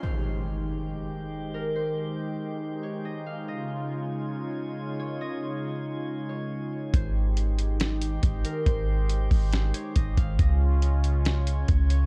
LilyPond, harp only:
\new Staff \with { instrumentName = "Harp" } { \time 4/4 \key aes \major \tempo 4 = 139 c''2.~ c''8 bes'8 | c''4 r4. des''8 ees''8 f''8 | ees''2.~ ees''8 des''8 | ees''4 r4. des''4. |
c''2.~ c''8 bes'8 | c''4 r4. des''8 ees''8 f''8 | ees''2.~ ees''8 des''8 | }